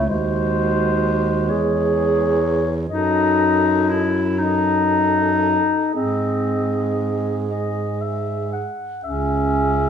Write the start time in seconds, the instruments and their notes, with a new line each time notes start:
0.08 baritone saxophone D#2, clarinet G#3 C5, alto saxophone F#4
1.49 baritone saxophone E2, alto saxophone G#4, clarinet C#5
2.89 baritone saxophone F#2, clarinet D#4 D#5, alto saxophone A4
3.89 clarinet E4
4.38 clarinet D#4 D#5, alto saxophone A4
5.94 baritone saxophone G#2, clarinet C4 D#5, alto saxophone G#4
7.50 clarinet D#5
8.02 clarinet E5
8.53 clarinet F#5
9.04 baritone saxophone C#2, clarinet C#4 E5, alto saxophone G#4